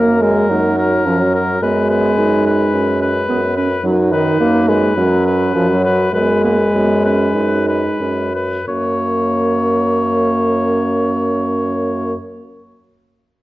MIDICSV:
0, 0, Header, 1, 5, 480
1, 0, Start_track
1, 0, Key_signature, 6, "major"
1, 0, Tempo, 558140
1, 1395, Time_signature, 4, 2, 24, 8
1, 3784, Tempo, 584795
1, 5704, Tempo, 632244
1, 6664, Tempo, 674157
1, 10525, End_track
2, 0, Start_track
2, 0, Title_t, "Oboe"
2, 0, Program_c, 0, 68
2, 0, Note_on_c, 0, 70, 37
2, 181, Note_off_c, 0, 70, 0
2, 192, Note_on_c, 0, 70, 34
2, 662, Note_off_c, 0, 70, 0
2, 667, Note_on_c, 0, 70, 36
2, 1142, Note_off_c, 0, 70, 0
2, 1155, Note_on_c, 0, 70, 37
2, 1388, Note_off_c, 0, 70, 0
2, 1393, Note_on_c, 0, 71, 36
2, 1625, Note_off_c, 0, 71, 0
2, 1630, Note_on_c, 0, 71, 37
2, 2101, Note_off_c, 0, 71, 0
2, 2118, Note_on_c, 0, 71, 38
2, 2583, Note_off_c, 0, 71, 0
2, 2599, Note_on_c, 0, 71, 40
2, 3059, Note_off_c, 0, 71, 0
2, 3069, Note_on_c, 0, 71, 40
2, 3299, Note_off_c, 0, 71, 0
2, 3546, Note_on_c, 0, 71, 40
2, 4008, Note_off_c, 0, 71, 0
2, 4018, Note_on_c, 0, 71, 39
2, 4479, Note_off_c, 0, 71, 0
2, 4488, Note_on_c, 0, 71, 37
2, 4958, Note_off_c, 0, 71, 0
2, 4970, Note_on_c, 0, 71, 40
2, 5205, Note_off_c, 0, 71, 0
2, 5212, Note_on_c, 0, 71, 39
2, 5451, Note_off_c, 0, 71, 0
2, 5460, Note_on_c, 0, 71, 38
2, 5928, Note_off_c, 0, 71, 0
2, 5942, Note_on_c, 0, 71, 37
2, 6408, Note_off_c, 0, 71, 0
2, 6418, Note_on_c, 0, 71, 29
2, 6896, Note_off_c, 0, 71, 0
2, 6909, Note_on_c, 0, 71, 29
2, 7141, Note_off_c, 0, 71, 0
2, 7145, Note_on_c, 0, 73, 37
2, 9608, Note_off_c, 0, 73, 0
2, 10525, End_track
3, 0, Start_track
3, 0, Title_t, "Clarinet"
3, 0, Program_c, 1, 71
3, 0, Note_on_c, 1, 58, 44
3, 424, Note_off_c, 1, 58, 0
3, 429, Note_on_c, 1, 63, 53
3, 911, Note_on_c, 1, 61, 43
3, 924, Note_off_c, 1, 63, 0
3, 1391, Note_off_c, 1, 61, 0
3, 1397, Note_on_c, 1, 59, 50
3, 1874, Note_on_c, 1, 63, 60
3, 1887, Note_off_c, 1, 59, 0
3, 2352, Note_on_c, 1, 61, 47
3, 2365, Note_off_c, 1, 63, 0
3, 2687, Note_off_c, 1, 61, 0
3, 2829, Note_on_c, 1, 59, 48
3, 2935, Note_off_c, 1, 59, 0
3, 3070, Note_on_c, 1, 61, 43
3, 3175, Note_off_c, 1, 61, 0
3, 3300, Note_on_c, 1, 63, 62
3, 4230, Note_off_c, 1, 63, 0
3, 4250, Note_on_c, 1, 61, 52
3, 4956, Note_off_c, 1, 61, 0
3, 5207, Note_on_c, 1, 59, 44
3, 5436, Note_off_c, 1, 59, 0
3, 5453, Note_on_c, 1, 58, 41
3, 5565, Note_off_c, 1, 58, 0
3, 5698, Note_on_c, 1, 59, 45
3, 5927, Note_off_c, 1, 59, 0
3, 5934, Note_on_c, 1, 61, 43
3, 6162, Note_on_c, 1, 63, 45
3, 6173, Note_off_c, 1, 61, 0
3, 6655, Note_off_c, 1, 63, 0
3, 6660, Note_on_c, 1, 61, 33
3, 6898, Note_off_c, 1, 61, 0
3, 7146, Note_on_c, 1, 61, 38
3, 9608, Note_off_c, 1, 61, 0
3, 10525, End_track
4, 0, Start_track
4, 0, Title_t, "French horn"
4, 0, Program_c, 2, 60
4, 0, Note_on_c, 2, 58, 58
4, 184, Note_on_c, 2, 56, 61
4, 197, Note_off_c, 2, 58, 0
4, 426, Note_on_c, 2, 54, 56
4, 439, Note_off_c, 2, 56, 0
4, 914, Note_on_c, 2, 53, 55
4, 927, Note_off_c, 2, 54, 0
4, 1038, Note_on_c, 2, 54, 56
4, 1051, Note_off_c, 2, 53, 0
4, 1389, Note_off_c, 2, 54, 0
4, 1394, Note_on_c, 2, 56, 62
4, 3030, Note_off_c, 2, 56, 0
4, 3301, Note_on_c, 2, 54, 62
4, 3545, Note_on_c, 2, 51, 61
4, 3558, Note_off_c, 2, 54, 0
4, 3780, Note_off_c, 2, 51, 0
4, 3785, Note_on_c, 2, 58, 71
4, 4018, Note_on_c, 2, 56, 58
4, 4030, Note_off_c, 2, 58, 0
4, 4251, Note_off_c, 2, 56, 0
4, 4255, Note_on_c, 2, 54, 62
4, 4720, Note_off_c, 2, 54, 0
4, 4726, Note_on_c, 2, 53, 63
4, 4840, Note_off_c, 2, 53, 0
4, 4845, Note_on_c, 2, 54, 59
4, 5200, Note_off_c, 2, 54, 0
4, 5205, Note_on_c, 2, 56, 62
4, 6874, Note_off_c, 2, 56, 0
4, 7153, Note_on_c, 2, 58, 44
4, 9611, Note_off_c, 2, 58, 0
4, 10525, End_track
5, 0, Start_track
5, 0, Title_t, "Bassoon"
5, 0, Program_c, 3, 70
5, 0, Note_on_c, 3, 42, 47
5, 372, Note_off_c, 3, 42, 0
5, 431, Note_on_c, 3, 42, 51
5, 856, Note_off_c, 3, 42, 0
5, 912, Note_on_c, 3, 42, 46
5, 1338, Note_off_c, 3, 42, 0
5, 1392, Note_on_c, 3, 42, 46
5, 1816, Note_off_c, 3, 42, 0
5, 1874, Note_on_c, 3, 42, 50
5, 2295, Note_off_c, 3, 42, 0
5, 2354, Note_on_c, 3, 42, 52
5, 2772, Note_off_c, 3, 42, 0
5, 2828, Note_on_c, 3, 42, 46
5, 3245, Note_off_c, 3, 42, 0
5, 3303, Note_on_c, 3, 42, 53
5, 3726, Note_off_c, 3, 42, 0
5, 3786, Note_on_c, 3, 42, 52
5, 4195, Note_off_c, 3, 42, 0
5, 4252, Note_on_c, 3, 42, 54
5, 4672, Note_off_c, 3, 42, 0
5, 4732, Note_on_c, 3, 42, 51
5, 5154, Note_off_c, 3, 42, 0
5, 5212, Note_on_c, 3, 42, 50
5, 5647, Note_off_c, 3, 42, 0
5, 5708, Note_on_c, 3, 42, 50
5, 6117, Note_off_c, 3, 42, 0
5, 6168, Note_on_c, 3, 42, 46
5, 6534, Note_off_c, 3, 42, 0
5, 6663, Note_on_c, 3, 42, 38
5, 7090, Note_off_c, 3, 42, 0
5, 7146, Note_on_c, 3, 42, 37
5, 9608, Note_off_c, 3, 42, 0
5, 10525, End_track
0, 0, End_of_file